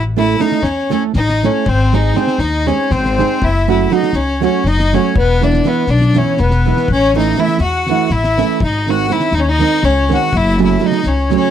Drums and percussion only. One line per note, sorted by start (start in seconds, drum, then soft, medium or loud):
0.17 snare soft
0.40 snare soft
0.52 snare soft
0.63 snare soft
0.90 snare soft
1.13 snare soft
1.29 snare soft
1.44 snare soft
1.66 kick medium
1.93 snare soft
2.16 snare soft
2.27 snare soft
2.38 snare soft
2.67 snare soft
2.91 snare soft
3.05 snare soft
3.19 snare soft
3.42 kick medium
3.69 snare soft
3.92 snare soft
4.03 snare soft
4.13 snare soft
4.42 snare soft
4.65 snare soft
4.79 snare soft
4.93 snare soft
5.16 kick medium
5.41 snare soft
5.53 snare soft
5.64 snare soft
5.87 snare soft
6.01 snare soft
6.14 snare soft
6.37 snare soft
6.50 snare soft
6.77 snare soft
6.88 kick medium
7.13 snare soft
7.36 snare soft
7.48 snare soft
7.58 snare soft
7.86 snare soft
8.10 snare soft
8.24 snare soft
8.37 snare soft
8.60 kick medium
8.87 snare soft
9.10 snare soft
9.20 snare soft
9.31 snare soft
9.59 snare soft
9.83 snare soft
10.11 snare soft
10.33 kick medium
10.58 snare soft
10.80 snare soft
10.91 snare soft
11.03 snare soft
11.30 snare soft